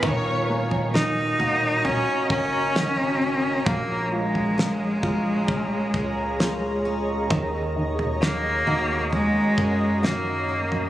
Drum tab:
SD |----o-------o---|----o-------o---|----o-------o---|
FT |o--o--o-o-------|o--o--o-o-------|o--o--o-o------o|
BD |o---------o-----|o-----o-o-o-----|o---------o-----|